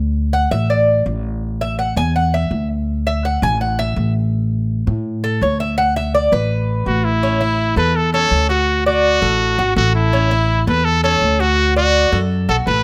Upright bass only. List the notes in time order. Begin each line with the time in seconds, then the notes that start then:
Already playing: D2
0.51 A1
1.06 A1
1.96 E2
2.51 D2
3.42 A1
3.96 A1
4.87 A2
5.41 D2
6.32 A1
6.86 A1
7.76 E2
8.31 D2
9.22 A1
9.58 G#1
9.76 A1
10.67 E2
11.21 D2
12.12 F#2
12.49 B1
12.67 A1